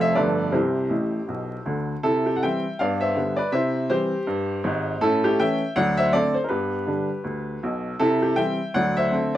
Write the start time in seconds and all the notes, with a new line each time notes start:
Already playing: F1 F2 F3 A3 C4 A4 C5 F5
0.01 E5
0.15 G1 G2 F3 A3 B3 A4 B4 D5
0.52 C2 C3 E4 G4 C5
0.90 A1 A2
1.28 B1 B2
1.66 D2 D3
2.03 C3 E4 A4
2.26 G4
2.36 F#5
2.43 E3 G3 C4 E5 G5
2.79 G2 B3 D5 F5
3.01 C5 E5
3.16 D3 G3 B3
3.37 B4 D5
3.52 C3 E4 C5 E5
3.90 E3 G3 C4 G4 C5
4.27 G2
4.64 G#1 G#2
5.01 A2 C#4 E4 A4
5.24 E4 G4
5.39 E3 A3 C#4 E5 G5
5.76 D2 F#3 D5 F#5
5.97 C5 E5
6.13 D3 A3 C4 A4 D5
6.34 C5
6.44 A#4
6.49 G2 B3 G4 B4
6.87 D3 G3 D4
7.24 D2
7.63 B1 B2
7.99 C3 E4 A4
8.22 E4 G4
8.36 E3 G3 C4 E5 G5
8.74 D2 F#3 D5 F#5
8.97 C5 E5
9.12 D3 A3 C4